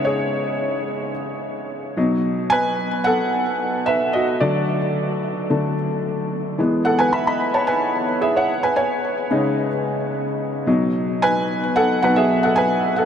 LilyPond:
<<
  \new Staff \with { instrumentName = "Felt piano" } { \time 4/4 \key b \mixolydian \tempo 4 = 110 <gis' cis''>2 r2 | r8 <b' gis''>4 <a' fis''>4. <b' e''>8 <fis' dis''>8 | <fis' d''>2 r2 | r8 <a' fis''>16 <b' gis''>16 <e'' b''>16 <dis'' b''>8 <cis'' a''>16 <b' gis''>4 <gis' e''>16 <cis'' fis''>8 <b' gis''>16 |
<cis'' gis''>4 r2. | r8 <b' gis''>4 <a' fis''>8 <b' fis''>16 <gis' e''>8 <a' fis''>16 <b' gis''>8. <a' fis''>16 | }
  \new Staff \with { instrumentName = "Felt piano" } { \clef bass \time 4/4 \key b \mixolydian <cis gis dis'>8 r2. <b, fis dis'>8~ | <b, fis dis'>2.~ <b, fis dis'>8 r8 | <d fis a>8 r4. <d fis a>8 r4. | <e gis b>2.~ <e gis b>8 r8 |
r4 <cis gis dis'>8 r2 <b, fis dis'>8~ | <b, fis dis'>4 r4 <b, fis dis'>8 r4. | }
>>